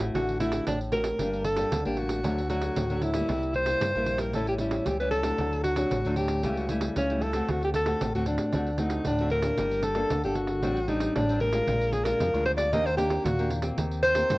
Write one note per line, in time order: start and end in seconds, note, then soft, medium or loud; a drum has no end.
0.00 0.11 A1 medium
0.00 0.12 A2 medium
0.00 0.35 A3 medium
0.00 0.36 E4 medium
0.00 0.36 F#4 medium
0.00 pandeiro medium
0.14 0.59 A1 medium
0.14 0.64 D3 medium
0.14 0.39 F#4 medium
0.14 pandeiro medium
0.29 pandeiro soft
0.39 0.74 A3 medium
0.39 0.64 E4 medium
0.39 0.74 E4 medium
0.39 0.74 F#4 medium
0.39 pandeiro medium
0.52 pandeiro medium
0.66 1.11 A1 medium
0.66 1.17 A2 medium
0.66 0.79 D4 medium
0.66 pandeiro medium
0.81 pandeiro soft
0.92 1.08 A3 soft
0.92 1.08 E4 soft
0.92 1.08 F#4 medium
0.92 1.41 A#4 medium
0.92 pandeiro medium
1.04 pandeiro medium
1.18 1.63 G1 loud
1.18 1.69 G2 soft
1.18 1.44 G3 medium
1.18 1.44 A#3 medium
1.18 1.45 D4 medium
1.18 pandeiro medium
1.33 pandeiro soft
1.44 1.82 A4 medium
1.44 pandeiro medium
1.57 1.80 G3 medium
1.57 1.80 A#3 medium
1.57 1.80 D4 medium
1.57 pandeiro medium
1.72 1.83 D2 medium
1.72 2.22 D3 soft
1.72 pandeiro medium
1.85 2.24 A1 loud
1.85 2.20 G3 medium
1.85 2.20 A#3 medium
1.85 2.21 D4 medium
1.85 1.99 G4 medium
1.85 pandeiro soft
1.97 2.49 F#4 medium
1.97 pandeiro medium
2.09 pandeiro medium
2.23 2.69 D2 medium
2.23 2.74 D3 medium
2.23 2.39 F#3 medium
2.23 2.39 A3 medium
2.23 2.40 D4 medium
2.23 pandeiro medium
2.38 pandeiro soft
2.49 2.85 F#3 medium
2.49 2.85 A3 medium
2.49 2.85 D4 medium
2.49 3.04 F#4 medium
2.49 pandeiro medium
2.62 pandeiro medium
2.76 3.21 D2 medium
2.76 3.26 A2 medium
2.76 pandeiro medium
2.90 3.12 F#3 medium
2.90 3.12 A3 soft
2.90 3.12 D4 medium
2.90 pandeiro soft
3.02 3.55 E4 medium
3.02 pandeiro medium
3.14 3.63 G3 medium
3.14 3.63 A#3 soft
3.14 3.63 E4 medium
3.14 pandeiro medium
3.29 3.73 C2 medium
3.29 3.79 C3 medium
3.29 pandeiro medium
3.43 pandeiro soft
3.54 4.22 C5 loud
3.54 pandeiro medium
3.66 3.90 G3 soft
3.66 3.90 A#3 medium
3.66 3.90 E4 medium
3.66 pandeiro medium
3.81 3.92 G2 medium
3.81 4.31 G2 medium
3.81 pandeiro medium
3.95 4.33 A#1 medium
3.95 4.30 G3 medium
3.95 4.31 A#3 medium
3.95 4.31 E4 medium
3.95 pandeiro soft
4.06 pandeiro medium
4.18 4.34 A#4 medium
4.18 pandeiro medium
4.33 4.78 A1 medium
4.33 4.84 A2 medium
4.33 4.56 G3 medium
4.33 4.57 C#4 medium
4.33 4.57 E4 medium
4.33 4.47 A4 medium
4.33 pandeiro medium
4.47 4.54 G4 medium
4.47 pandeiro soft
4.58 4.95 G3 medium
4.58 4.95 C#4 medium
4.58 4.87 E4 medium
4.58 4.95 E4 medium
4.58 pandeiro medium
4.71 pandeiro medium
4.86 5.31 C#2 loud
4.86 5.37 E3 medium
4.86 4.99 G4 medium
4.86 pandeiro medium
5.00 5.22 G3 medium
5.00 5.22 C#4 medium
5.00 5.22 E4 medium
5.00 5.10 B4 medium
5.00 pandeiro soft
5.11 5.60 A4 loud
5.11 pandeiro medium
5.23 5.73 F#3 medium
5.23 5.73 A3 medium
5.23 5.74 D4 medium
5.23 pandeiro medium
5.38 5.83 D2 medium
5.38 5.89 D3 medium
5.38 pandeiro medium
5.52 pandeiro soft
5.63 6.13 F#4 medium
5.63 pandeiro medium
5.76 5.99 F#3 soft
5.76 5.99 A3 medium
5.76 6.00 D4 medium
5.76 pandeiro medium
5.91 6.02 A1 medium
5.91 6.41 A2 soft
5.91 pandeiro medium
6.05 6.45 D2 loud
6.05 6.40 F#3 medium
6.05 6.40 A3 medium
6.05 6.41 D4 medium
6.05 pandeiro soft
6.16 6.59 G4 medium
6.16 pandeiro medium
6.28 pandeiro medium
6.43 6.88 C#2 medium
6.43 6.94 C#3 medium
6.43 6.66 G3 medium
6.43 6.66 A3 medium
6.43 6.66 E4 medium
6.43 pandeiro medium
6.57 6.70 F#4 medium
6.57 pandeiro soft
6.69 7.05 G3 medium
6.69 7.05 A3 medium
6.69 7.05 E4 medium
6.69 pandeiro medium
6.81 pandeiro medium
6.96 7.41 C#2 loud
6.96 7.46 C#3 soft
6.96 7.24 C#4 medium
6.96 pandeiro medium
7.10 7.32 G3 medium
7.10 7.32 A3 medium
7.10 7.32 E4 medium
7.10 pandeiro soft
7.21 7.52 A4 medium
7.21 pandeiro medium
7.33 7.83 A3 medium
7.33 7.83 C4 medium
7.33 7.83 F#4 medium
7.33 pandeiro medium
7.48 7.93 D2 loud
7.48 7.98 D3 soft
7.48 7.63 F#4 medium
7.48 pandeiro medium
7.62 7.70 G4 medium
7.62 pandeiro soft
7.74 8.12 A4 medium
7.74 pandeiro medium
7.86 8.09 A3 medium
7.86 8.09 C4 medium
7.86 8.09 F#4 medium
7.86 pandeiro medium
8.01 8.12 A1 medium
8.01 8.51 A2 medium
8.01 pandeiro medium
8.15 8.37 D2 medium
8.15 8.50 A3 medium
8.15 8.50 C4 medium
8.15 8.27 F#4 medium
8.15 8.50 F#4 medium
8.15 pandeiro soft
8.26 8.52 D4 medium
8.26 pandeiro medium
8.38 pandeiro medium
8.53 8.98 D2 medium
8.53 9.04 D3 medium
8.53 8.69 A3 medium
8.53 8.69 C4 medium
8.53 8.81 D4 medium
8.53 8.70 F#4 medium
8.53 pandeiro medium
8.67 pandeiro soft
8.78 9.14 A3 medium
8.78 9.14 C4 medium
8.78 9.06 D#4 medium
8.78 9.15 F#4 medium
8.78 pandeiro medium
8.90 pandeiro medium
9.05 9.51 D2 medium
9.05 9.56 A2 medium
9.05 9.31 D4 medium
9.05 pandeiro medium
9.19 9.42 A3 medium
9.19 9.42 C4 medium
9.19 9.42 F#4 medium
9.19 pandeiro soft
9.30 9.85 A#4 loud
9.30 pandeiro soft
9.43 9.93 A#3 medium
9.43 9.93 D4 medium
9.43 pandeiro medium
9.58 10.03 G1 loud
9.58 10.09 G3 medium
9.58 pandeiro medium
9.71 pandeiro soft
9.83 10.23 A4 loud
9.83 pandeiro medium
9.95 10.19 A#3 medium
9.95 10.19 D4 medium
9.95 10.19 A4 medium
9.95 pandeiro medium
10.10 10.22 D2 medium
10.10 10.61 D3 medium
10.10 pandeiro medium
10.24 10.63 G1 loud
10.24 10.59 A#3 medium
10.24 10.60 D4 soft
10.24 10.37 G4 medium
10.24 10.60 A4 medium
10.24 pandeiro soft
10.35 10.90 F#4 loud
10.35 pandeiro medium
10.48 pandeiro medium
10.63 11.08 A1 medium
10.63 11.13 A2 medium
10.63 10.79 G3 medium
10.63 10.79 C4 medium
10.63 10.79 D4 medium
10.63 pandeiro medium
10.77 pandeiro soft
10.88 11.24 G3 medium
10.88 11.24 C4 medium
10.88 11.24 D4 medium
10.88 11.15 D#4 medium
10.88 pandeiro medium
11.00 pandeiro medium
11.15 11.60 A1 loud
11.15 11.66 A2 medium
11.15 11.40 D4 medium
11.15 pandeiro medium
11.29 11.51 G3 medium
11.29 11.51 C4 medium
11.29 11.51 D4 medium
11.29 pandeiro soft
11.40 11.94 A#4 loud
11.40 pandeiro soft
11.53 12.02 G#3 medium
11.53 12.02 D4 soft
11.53 12.03 F4 medium
11.53 pandeiro medium
11.67 12.12 A#1 loud
11.67 12.18 A#2 medium
11.67 pandeiro medium
11.81 pandeiro soft
11.93 12.06 G#4 medium
11.93 pandeiro medium
12.04 12.28 G#3 medium
12.04 12.28 D4 medium
12.04 12.29 F4 medium
12.04 12.45 A#4 loud
12.04 pandeiro medium
12.20 12.31 F2 medium
12.20 12.70 F3 soft
12.20 pandeiro medium
12.34 12.72 D2 medium
12.34 12.69 G#3 medium
12.34 12.69 D4 medium
12.34 12.69 F4 medium
12.34 pandeiro soft
12.45 12.52 C5 medium
12.45 pandeiro medium
12.57 12.74 D5 medium
12.57 pandeiro medium
12.72 13.17 D#2 medium
12.72 13.23 D#3 medium
12.72 12.88 A#3 medium
12.72 12.88 D4 medium
12.72 12.89 G4 medium
12.72 12.87 D#5 loud
12.72 pandeiro medium
12.86 12.96 C5 loud
12.86 pandeiro soft
12.97 13.23 A#3 medium
12.97 13.23 D4 medium
12.97 13.26 G4 medium
12.97 13.24 G4 medium
12.97 pandeiro medium
13.10 pandeiro medium
13.24 13.69 D#2 loud
13.24 13.75 A#2 medium
13.24 13.51 F#4 medium
13.24 pandeiro medium
13.39 13.61 A#3 medium
13.39 13.61 D4 medium
13.39 13.61 G4 medium
13.39 pandeiro soft
13.50 pandeiro medium
13.62 14.12 A#3 medium
13.62 14.12 C4 medium
13.62 14.12 G4 medium
13.62 pandeiro medium
13.77 14.22 D#2 loud
13.77 14.27 D#3 medium
13.77 pandeiro medium
13.91 pandeiro soft
14.03 14.38 C5 loud
14.03 pandeiro medium
14.15 14.38 A#3 medium
14.15 14.38 C4 medium
14.15 14.38 G4 medium
14.15 pandeiro medium
14.30 14.38 G2 loud
14.30 14.38 D#3 medium
14.30 pandeiro medium